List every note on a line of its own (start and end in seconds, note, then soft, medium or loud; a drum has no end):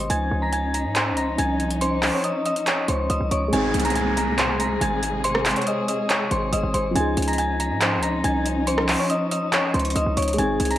0.10 0.30 C#2 loud
0.10 3.49 F3 medium
0.10 3.49 C#4 medium
0.10 3.49 D#4 medium
0.10 0.40 G#5 loud
0.10 0.40 G#6 medium
0.10 closed hi-hat medium
0.31 0.86 C#2 loud
0.42 0.52 A#5 medium
0.42 0.52 A#6 medium
0.53 0.72 G#5 loud
0.53 0.72 G#6 medium
0.53 closed hi-hat medium
0.74 0.93 A#5 medium
0.74 0.94 A#6 medium
0.74 closed hi-hat medium
0.85 1.13 G#2 loud
0.95 1.15 C5 medium
0.95 1.15 C6 medium
0.95 clap loud
0.95 closed hi-hat medium
1.12 1.37 C#2 loud
1.17 1.36 A#5 medium
1.17 1.36 A#6 medium
1.17 closed hi-hat medium
1.38 2.10 C2 loud
1.38 1.57 G#5 loud
1.38 1.58 G#6 medium
1.38 closed hi-hat medium
1.60 closed hi-hat soft
1.71 closed hi-hat medium
1.81 2.12 C5 medium
1.81 2.11 C6 loud
1.81 closed hi-hat medium
2.03 clap loud
2.03 open hi-hat medium
2.13 2.23 C#5 medium
2.13 2.23 C#6 medium
2.24 2.44 D#5 medium
2.24 2.43 D#6 medium
2.24 closed hi-hat medium
2.46 2.65 D#5 medium
2.46 2.65 D#6 medium
2.46 closed hi-hat medium
2.56 closed hi-hat medium
2.67 2.86 C#5 medium
2.67 2.86 C#6 medium
2.67 clap loud
2.67 closed hi-hat medium
2.88 3.09 C#2 loud
2.88 3.08 C5 medium
2.88 3.07 C6 medium
2.88 closed hi-hat medium
3.10 3.20 C#2 loud
3.10 3.29 D#5 medium
3.10 3.29 D#6 medium
3.10 closed hi-hat medium
3.21 3.31 C2 loud
3.31 3.52 C#2 loud
3.31 3.51 C#5 medium
3.31 3.50 C#6 medium
3.31 closed hi-hat medium
3.48 6.89 G#3 medium
3.48 6.91 C4 medium
3.53 3.73 G#1 loud
3.53 6.92 C3 medium
3.53 6.92 G#3 medium
3.53 6.92 D#4 medium
3.53 6.92 G#4 medium
3.53 3.83 G#5 loud
3.53 3.83 G#6 medium
3.53 closed hi-hat medium
3.53 downlifter medium
3.57 6.94 G#4 medium
3.74 4.77 C2 loud
3.74 closed hi-hat medium
3.79 closed hi-hat medium
3.85 3.94 A#5 medium
3.85 3.95 A#6 medium
3.85 closed hi-hat medium
3.90 closed hi-hat soft
3.95 4.15 G#5 medium
3.95 4.15 G#6 medium
3.95 closed hi-hat medium
4.17 4.36 A#5 medium
4.17 4.36 A#6 medium
4.17 closed hi-hat medium
4.38 4.58 C5 medium
4.38 4.57 C6 medium
4.38 clap loud
4.38 closed hi-hat medium
4.60 4.79 A#5 medium
4.60 4.79 A#6 medium
4.60 closed hi-hat medium
4.81 5.53 G#1 loud
4.81 5.00 G#5 medium
4.81 5.01 G#6 medium
4.81 closed hi-hat medium
5.03 closed hi-hat medium
5.24 5.55 C5 loud
5.24 5.54 C6 loud
5.24 closed hi-hat medium
5.35 cross-stick loud
5.46 clap loud
5.46 closed hi-hat medium
5.46 open hi-hat medium
5.51 closed hi-hat medium
5.56 5.66 C#5 medium
5.56 5.66 C#6 medium
5.56 closed hi-hat medium
5.62 closed hi-hat soft
5.67 5.86 D#5 medium
5.67 5.86 D#6 medium
5.67 closed hi-hat medium
5.88 6.08 D#5 medium
5.88 6.07 D#6 medium
5.88 closed hi-hat medium
6.10 6.29 C#5 medium
6.10 6.29 C#6 medium
6.10 clap loud
6.10 closed hi-hat medium
6.31 6.52 G#1 loud
6.31 6.51 C5 medium
6.31 6.50 C6 medium
6.31 closed hi-hat medium
6.53 6.63 G#1 loud
6.53 6.72 D#5 medium
6.53 6.72 D#6 medium
6.53 closed hi-hat medium
6.63 6.74 G#1 loud
6.74 6.95 G#1 loud
6.74 6.94 C5 medium
6.74 6.93 C6 medium
6.74 closed hi-hat medium
6.91 10.32 F3 medium
6.91 10.34 C#4 medium
6.96 7.16 C#2 loud
6.96 10.35 F3 medium
6.96 10.35 C#4 medium
6.96 10.35 D#4 medium
6.96 7.26 G#5 loud
6.96 7.26 G#6 medium
6.96 closed hi-hat medium
7.00 10.37 G#4 medium
7.17 7.72 C#2 loud
7.17 closed hi-hat medium
7.22 closed hi-hat medium
7.28 7.37 A#5 medium
7.28 7.38 A#6 medium
7.28 closed hi-hat medium
7.33 closed hi-hat soft
7.38 7.57 G#5 loud
7.38 7.58 G#6 medium
7.38 closed hi-hat medium
7.60 7.79 A#5 medium
7.60 7.79 A#6 medium
7.60 closed hi-hat medium
7.71 7.99 G#2 loud
7.81 8.01 C5 medium
7.81 8.00 C6 medium
7.81 clap loud
7.81 closed hi-hat medium
7.97 8.23 C#2 medium
8.03 8.22 A#5 medium
8.03 8.22 A#6 medium
8.03 closed hi-hat medium
8.24 8.96 C2 loud
8.24 8.43 G#5 loud
8.24 8.44 G#6 medium
8.24 closed hi-hat medium
8.46 closed hi-hat medium
8.67 8.98 C5 medium
8.67 8.97 C6 loud
8.67 closed hi-hat medium
8.78 cross-stick loud
8.88 clap loud
8.88 open hi-hat medium
8.99 9.09 C#5 medium
8.99 9.09 C#6 medium
9.10 9.29 D#5 medium
9.10 9.29 D#6 medium
9.10 closed hi-hat medium
9.31 9.51 D#5 medium
9.31 9.50 D#6 medium
9.31 closed hi-hat medium
9.53 9.72 C#5 medium
9.53 9.72 C#6 medium
9.53 clap loud
9.53 closed hi-hat medium
9.74 9.95 C#2 loud
9.74 9.94 C5 medium
9.74 9.93 C6 medium
9.74 closed hi-hat soft
9.79 closed hi-hat soft
9.85 closed hi-hat medium
9.90 closed hi-hat medium
9.96 10.06 C#2 loud
9.96 10.15 D#5 medium
9.96 10.15 D#6 medium
9.96 closed hi-hat medium
10.06 10.17 C2 loud
10.17 10.38 C#2 loud
10.17 10.36 C#5 medium
10.17 10.36 C#6 medium
10.17 closed hi-hat medium
10.22 closed hi-hat medium
10.28 closed hi-hat medium
10.33 10.78 G#3 medium
10.33 10.78 C4 medium
10.33 closed hi-hat soft
10.38 10.59 G#1 loud
10.38 10.78 C3 medium
10.38 10.78 G#3 medium
10.38 10.78 D#4 medium
10.38 10.78 G#4 medium
10.38 10.69 G#5 loud
10.38 10.69 G#6 medium
10.38 closed hi-hat medium
10.43 10.78 G#4 medium
10.60 10.78 C2 loud
10.60 closed hi-hat medium
10.65 closed hi-hat medium
10.71 10.78 A#5 medium
10.71 10.78 A#6 medium
10.71 closed hi-hat soft